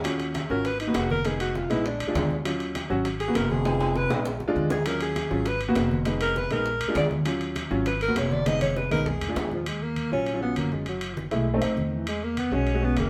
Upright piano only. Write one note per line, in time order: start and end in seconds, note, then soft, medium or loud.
0.05 0.36 C#4 medium
0.05 0.36 F4 medium
0.05 0.37 F#4 medium
0.50 0.65 C#4 medium
0.50 0.65 F4 medium
0.50 0.65 F#4 medium
0.87 1.14 A#3 medium
0.87 1.14 B3 medium
0.87 1.14 F#4 medium
1.25 1.56 G#3 medium
1.25 1.57 B3 medium
1.25 1.57 D#4 medium
1.70 1.85 G#3 medium
1.70 1.85 B3 medium
1.70 1.85 D#4 medium
2.07 2.34 G#3 medium
2.07 2.34 D4 medium
2.07 2.34 F4 medium
2.45 2.77 F#3 medium
2.45 2.77 C#4 medium
2.45 2.77 F4 medium
2.90 3.05 F#3 medium
2.90 3.05 C#4 medium
2.90 3.05 F#4 loud
3.28 3.54 A#3 medium
3.28 3.54 B3 medium
3.28 3.54 F#4 medium
3.65 3.97 G#3 medium
3.65 3.97 B3 medium
3.65 3.97 D#4 medium
4.10 4.25 G#3 medium
4.10 4.25 B3 medium
4.10 4.25 D#4 medium
4.48 4.74 G#3 loud
4.48 4.74 D4 loud
4.48 4.74 F4 loud
4.86 5.17 F#3 medium
4.86 5.17 C#4 medium
4.86 5.17 F4 medium
5.30 5.45 F#3 medium
5.30 5.46 C#4 medium
5.30 5.46 F4 medium
5.68 5.95 A#3 loud
5.68 5.95 B3 medium
5.68 5.95 F#4 loud
6.06 6.37 G#3 medium
6.06 6.37 B3 medium
6.06 6.37 D#4 medium
6.51 6.66 G#3 medium
6.51 6.66 B3 medium
6.51 6.66 D#4 medium
6.88 7.14 G#3 medium
6.88 7.15 D4 medium
6.88 7.15 F4 medium
7.25 7.57 F#3 medium
7.25 7.57 C#4 medium
7.25 7.57 F4 medium
7.71 7.86 F#3 medium
7.71 7.86 C#4 medium
7.71 7.86 F4 medium
8.08 8.34 A#3 medium
8.08 8.35 B3 medium
8.08 8.35 F#4 medium
8.46 8.78 G#3 medium
8.46 8.78 B3 soft
8.46 8.78 D#4 medium
8.91 9.06 G#3 medium
8.91 9.06 B3 medium
8.91 9.06 D#4 loud
9.29 9.55 G#3 medium
9.29 9.55 D4 medium
9.29 9.55 F4 medium
10.12 10.27 F#3 medium
10.12 10.28 C#4 medium
10.12 10.28 F4 medium
10.34 10.39 F#3 medium
10.34 10.39 C#4 medium
10.34 10.39 F4 medium
10.41 10.83 F#3 medium
10.41 10.84 C#4 medium
10.41 10.84 F4 medium
11.31 11.47 G#3 medium
11.31 11.47 A3 medium
11.31 11.47 E4 medium
11.54 11.59 A3 medium
11.54 11.60 C4 medium
11.54 11.60 D#4 loud
11.61 12.04 A3 medium
11.61 12.04 C4 medium
11.61 12.04 D#4 medium
12.52 12.68 G#3 medium
12.52 12.68 C#4 medium
12.52 12.68 F#4 medium
12.74 12.80 G#3 medium
12.74 12.80 C#4 medium
12.74 12.80 F#4 medium
12.81 13.10 G#3 medium
12.81 13.10 C#4 medium
12.81 13.10 F#4 medium